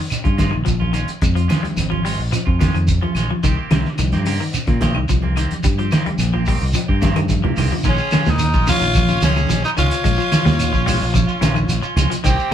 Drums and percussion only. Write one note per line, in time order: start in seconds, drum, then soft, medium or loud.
0.10 closed hi-hat medium
0.10 claves medium
0.10 shekere medium
0.25 kick medium
0.25 closed hi-hat soft
0.38 kick medium
0.38 snare medium
0.38 closed hi-hat soft
0.38 high conga medium
0.38 shekere soft
0.53 claves medium
0.66 kick medium
0.66 closed hi-hat medium
0.66 shekere medium
0.81 high conga medium
0.93 closed hi-hat soft
0.93 claves medium
0.93 shekere soft
1.08 closed hi-hat soft
1.22 kick medium
1.22 closed hi-hat medium
1.22 shekere medium
1.36 closed hi-hat soft
1.49 snare medium
1.49 closed hi-hat medium
1.49 high conga medium
1.49 claves medium
1.49 shekere soft
1.63 closed hi-hat soft
1.63 high conga medium
1.77 closed hi-hat medium
1.77 high conga medium
1.77 claves medium
1.77 shekere medium
1.92 high conga medium
2.06 open hi-hat medium
2.06 shekere soft
2.33 closed hi-hat medium
2.33 claves medium
2.33 shekere medium
2.47 kick medium
2.61 kick medium
2.61 snare medium
2.61 closed hi-hat soft
2.61 high conga medium
2.61 shekere soft
2.74 closed hi-hat soft
2.74 claves medium
2.88 kick medium
2.88 closed hi-hat medium
2.88 shekere medium
3.03 high conga medium
3.15 snare soft
3.15 closed hi-hat soft
3.15 claves medium
3.15 shekere soft
3.30 high conga medium
3.44 kick medium
3.44 closed hi-hat medium
3.44 shekere medium
3.71 snare medium
3.71 closed hi-hat soft
3.71 high conga medium
3.71 claves medium
3.71 shekere soft
3.85 snare soft
3.98 closed hi-hat medium
3.98 high conga medium
3.98 claves medium
3.98 shekere medium
4.12 snare soft
4.12 closed hi-hat soft
4.12 high conga medium
4.25 open hi-hat medium
4.25 shekere soft
4.53 closed hi-hat medium
4.53 claves medium
4.53 shekere medium
4.67 kick medium
4.67 snare soft
4.67 closed hi-hat soft
4.81 kick medium
4.81 snare medium
4.81 closed hi-hat soft
4.81 high conga loud
4.81 shekere soft
4.95 claves medium
5.09 kick medium
5.09 closed hi-hat medium
5.09 shekere medium
5.23 high conga medium
5.36 closed hi-hat soft
5.36 claves medium
5.36 shekere soft
5.51 closed hi-hat soft
5.51 high conga medium
5.63 kick medium
5.63 closed hi-hat medium
5.63 shekere medium
5.79 closed hi-hat soft
5.91 snare medium
5.91 closed hi-hat medium
5.91 high conga medium
5.91 claves medium
5.91 shekere soft
6.06 closed hi-hat soft
6.06 high conga medium
6.19 closed hi-hat medium
6.19 high conga medium
6.19 claves medium
6.19 shekere medium
6.34 high conga medium
6.46 kick medium
6.46 open hi-hat medium
6.46 shekere soft
6.73 closed hi-hat medium
6.73 claves medium
6.73 shekere medium
6.89 kick medium
7.02 kick medium
7.02 snare medium
7.02 closed hi-hat medium
7.02 high conga loud
7.02 shekere soft
7.16 closed hi-hat soft
7.16 high conga medium
7.16 claves medium
7.29 kick medium
7.29 closed hi-hat medium
7.29 high conga medium
7.29 shekere medium
7.45 low conga loud
7.56 open hi-hat medium
7.56 low conga loud
7.56 claves medium
7.56 shekere soft
7.73 low conga medium
7.83 kick medium
7.83 snare soft
7.83 closed hi-hat medium
7.83 shekere medium
7.98 shekere soft
8.11 snare medium
8.11 closed hi-hat medium
8.11 high conga medium
8.11 claves medium
8.11 shekere medium
8.25 snare medium
8.25 low conga medium
8.25 shekere soft
8.39 closed hi-hat medium
8.39 claves medium
8.39 shekere medium
8.53 kick medium
8.53 high conga medium
8.53 shekere soft
8.67 open hi-hat medium
8.67 high conga medium
8.67 low conga medium
8.67 shekere medium
8.81 closed hi-hat soft
8.81 shekere soft
8.94 kick medium
8.94 closed hi-hat medium
8.94 high conga medium
8.94 claves medium
8.94 shekere medium
9.08 high conga medium
9.08 shekere soft
9.22 snare medium
9.22 closed hi-hat medium
9.22 high conga medium
9.22 shekere medium
9.36 high conga medium
9.36 claves medium
9.36 shekere soft
9.50 snare soft
9.50 closed hi-hat medium
9.50 shekere loud
9.64 shekere soft
9.78 closed hi-hat soft
9.78 low conga medium
9.78 claves medium
9.78 shekere medium
9.91 closed hi-hat medium
9.91 shekere soft
10.05 kick medium
10.05 closed hi-hat medium
10.05 shekere medium
10.20 shekere soft
10.32 snare medium
10.32 closed hi-hat medium
10.32 high conga medium
10.32 claves medium
10.32 shekere medium
10.46 snare medium
10.46 low conga medium
10.46 shekere soft
10.59 closed hi-hat medium
10.59 claves medium
10.59 shekere loud
10.74 kick medium
10.74 high conga medium
10.74 shekere soft
10.87 open hi-hat medium
10.87 high conga medium
10.87 low conga medium
10.87 shekere medium
11.01 shekere soft
11.14 kick medium
11.14 closed hi-hat medium
11.14 high conga medium
11.14 claves medium
11.14 shekere medium
11.28 shekere soft
11.42 snare medium
11.42 closed hi-hat medium
11.42 high conga loud
11.42 shekere medium
11.56 high conga medium
11.56 claves medium
11.56 shekere soft
11.69 closed hi-hat medium
11.69 shekere medium
11.83 shekere soft
11.97 closed hi-hat soft
11.97 high conga medium
11.97 low conga medium
11.97 claves medium
11.97 shekere medium
12.11 closed hi-hat medium
12.11 shekere soft
12.24 kick medium
12.24 snare soft
12.24 closed hi-hat medium
12.24 shekere medium
12.39 shekere soft